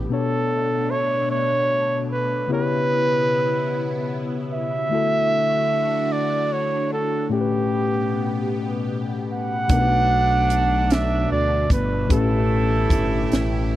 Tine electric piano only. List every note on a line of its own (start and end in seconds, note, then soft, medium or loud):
0.09 2.46 B2 medium
0.09 2.46 B3 medium
0.09 2.47 D4 medium
0.09 2.47 A4 medium
0.13 2.48 C#5 medium
2.48 4.85 C#3 medium
2.48 4.85 B3 medium
2.48 4.86 E4 medium
2.48 4.87 G4 medium
2.52 4.87 C#5 medium
4.89 7.26 D3 medium
4.89 7.26 A3 medium
4.89 7.27 E4 medium
4.89 7.27 F#4 medium
4.95 7.28 A4 medium
7.29 9.66 A2 medium
7.29 9.66 A3 medium
7.29 9.67 C#4 medium
7.29 9.67 G4 medium
7.34 7.38 A4 medium
7.41 9.71 B4 medium
9.68 12.05 B2 medium
9.68 12.05 A3 medium
9.68 12.06 B3 medium
9.68 12.07 D4 medium
9.73 9.78 A#4 medium
9.80 12.11 B4 medium
12.07 13.76 A2 medium
12.07 13.76 A3 medium
12.07 13.76 C#4 medium
12.07 13.76 G4 medium
12.12 13.76 B4 medium